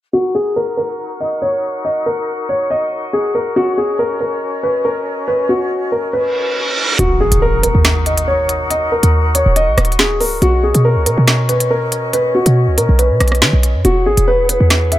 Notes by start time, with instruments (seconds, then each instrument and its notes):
0.13 flute section D#4 F#4 A#4 F#5, grand piano F#4
0.35 grand piano G#4
0.56 grand piano A#4
0.77 grand piano A#4
1.20 grand piano D#5
1.42 grand piano C#5
1.85 grand piano D#5
2.06 grand piano A#4
2.49 grand piano C#5
2.71 grand piano D#5
3.13 grand piano G#4
3.35 grand piano A#4
3.56 flute section C#4 C#5 D#5, grand piano F#4
3.78 grand piano G#4
3.99 grand piano A#4
4.21 grand piano A#4
4.63 grand piano B4
4.85 grand piano A#4
5.28 grand piano B4
5.49 grand piano F#4
5.92 grand piano A#4
6.13 grand piano B4, reverse cymbal
6.99 808-style bass D#1, flute section D#4 F#4 A#4 F#5, grand piano F#4, closed hi-hat, impact
7.20 808-style bass F#1, grand piano G#4
7.32 808-style bass D#1, closed hi-hat
7.42 grand piano A#4
7.63 grand piano A#4, closed hi-hat
7.75 808-style bass D#2
7.85 snare, closed hi-hat
8.06 grand piano D#5, closed hi-hat
8.17 closed hi-hat
8.28 grand piano C#5
8.49 closed hi-hat
8.70 grand piano D#5, closed hi-hat
8.92 grand piano A#4
9.03 808-style bass D#2, closed hi-hat
9.35 grand piano C#5, closed hi-hat
9.46 808-style bass D#1
9.56 grand piano D#5, closed hi-hat
9.68 808-style bass A#1
9.78 808-style bass D#1, cross-stick, closed hi-hat
9.85 closed hi-hat
9.92 closed hi-hat
9.99 grand piano G#4, snare
10.20 808-style bass C#1, grand piano A#4, open hi-hat
10.42 808-style bass B1, flute section C#4 C#5 D#5, grand piano F#4, closed hi-hat
10.63 grand piano G#4
10.75 808-style bass B2, closed hi-hat
10.85 grand piano A#4
10.96 808-style bass C#2
11.06 808-style bass B2, grand piano A#4, closed hi-hat
11.18 808-style bass B2
11.28 snare, closed hi-hat
11.49 grand piano B4, closed hi-hat
11.60 closed hi-hat
11.71 grand piano A#4
11.92 closed hi-hat
12.13 grand piano B4, closed hi-hat
12.35 grand piano F#4
12.46 808-style bass B2, closed hi-hat
12.68 808-style bass C#2
12.78 808-style bass B2, grand piano A#4, closed hi-hat
12.89 808-style bass B1
12.99 grand piano B4, closed hi-hat
13.10 808-style bass B2
13.20 808-style bass B1, cross-stick, closed hi-hat
13.28 closed hi-hat
13.32 cross-stick, closed hi-hat
13.42 808-style bass D#3, snare
13.53 808-style bass B1
13.63 closed hi-hat
13.75 808-style bass F#2
13.85 808-style bass E1, flute section E4 G#4 F#5, grand piano F#4, closed hi-hat
14.06 808-style bass G#1, grand piano G#4
14.17 808-style bass E1, closed hi-hat
14.28 grand piano B4
14.49 grand piano B4, closed hi-hat
14.60 808-style bass E2
14.70 snare, closed hi-hat
14.92 grand piano E5, closed hi-hat